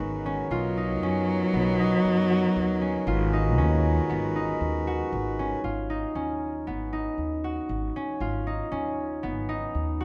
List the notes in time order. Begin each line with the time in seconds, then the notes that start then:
Already playing: D#3 G#3 B3 C#4 D#4 F#4 A#4 B4
0.00 G#1
0.26 C#4
0.51 B1 F#3 B3 F4 D#5
0.77 D#4
1.02 F#2 C#4
1.53 B1 B3
1.80 D#4
2.05 F#2
2.30 F#4
2.56 D#2
2.81 C#4
3.07 G#1 D#3 G#3 F4 F#4 B4
3.33 D#4
3.58 D#2 C#4
4.09 G#1 B3
4.36 D#4
4.61 D#2
4.87 F#4
5.13 G#1
5.39 C#4
5.64 G#1 F4
5.90 D#4
6.15 D#2 C#4
6.67 G#1 B3
6.93 D#4
7.18 D#2
7.44 F#4
7.69 G#1
7.96 C#4
8.20 G#1 F4
8.47 D#4
8.72 D#2 C#4
9.23 G#1 B3
9.49 D#4
9.75 D#2
10.00 F#4